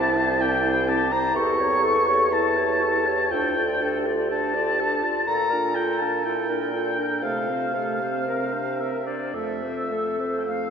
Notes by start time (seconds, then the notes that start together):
Already playing: C2 C4 E4 G4 A5
0.16 E4 C5
0.41 C4 G4 G5
0.65 E4 C5
0.88 C4 G4 A5
1.12 E4 C5 A#5
1.34 E2 E4 G4 A4 C#6
1.59 G4 C#5
1.82 E4 A4
2.07 G4 C#5
2.30 E4 A4 A5
2.57 G4 C#5
2.81 E4 G4 A4
3.06 G4 C#5
3.30 D2 D4 F4 A4 G5
3.57 F4 D5
3.81 D4 G4 A4
4.06 F4 D5
4.31 D4 A4 A5
4.54 F4 D5
4.80 D4 A4
5.03 F4 D5
5.27 A#2 F4 A4 A#5
5.50 D4 A#4
5.75 F4 A4 G5
5.99 D4 A#4 A5
6.24 E4 F4 A4 G5
6.49 D4 A#4
6.73 D4 F4 A4
6.99 D4 A#4
7.23 C3 A3 F4 A4 F5
7.50 C4 C5
7.73 A3 G4 A4
8.00 C4 C5
8.26 C4 A#4
8.53 D4 C5
8.80 C4 A#4 E5
9.06 D4 C5 D5
9.34 F2 A3 A4 E5
9.62 C4 C5
9.90 A3 A4
10.19 C4 C5
10.39 G5
10.47 A3 F5